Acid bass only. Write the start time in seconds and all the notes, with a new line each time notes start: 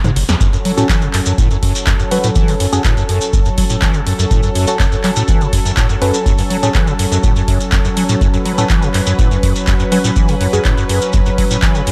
0.04 G#2
0.16 F#1
0.29 E2
0.41 F#2
0.53 F#2
0.65 F#3
0.78 A2
0.89 E3
1.02 C#3
1.14 F#2
1.26 F#2
1.38 A2
1.51 F#2
1.63 F#2
1.87 F#2
2.00 F#2
2.11 F#3
2.24 A2
2.36 E3
2.48 C#3
2.60 F#2
2.73 F#2
2.85 A2
2.97 F#2
3.09 F#2
3.33 F#2
3.46 F#2
3.58 F#3
3.70 A2
3.82 E3
3.95 C#3
4.07 F#2
4.19 F#2
4.31 A2
4.44 F#2
4.55 F#2
4.80 F#2
4.92 F#2
5.04 F#3
5.17 A2
5.28 E3
5.41 C#3
5.53 F#2
5.65 F#2
5.77 A2
5.90 F#2
6.02 F#2
6.26 F#2
6.38 F#2
6.50 F#3
6.63 A2
6.75 E3
6.87 C#3
6.99 F#2
7.12 F#2
7.24 A2
7.36 F#2
7.48 F#2
7.72 F#2
7.85 F#2
7.97 F#3
8.09 A2
8.21 F#2
8.34 F#2
8.45 F#3
8.58 A2
8.70 E3
8.82 C#3
8.94 F#2
9.07 F#2
9.19 A2
9.31 F#2
9.43 F#2
9.67 F#2
9.80 F#2
9.92 F#3
10.04 A2
10.16 E3
10.29 C#3
10.41 F#2
10.53 F#2
10.65 A2
10.78 F#2
10.89 F#2
11.14 F#2
11.26 F#2
11.38 F#3
11.51 A2
11.63 E3
11.75 C#3
11.87 F#2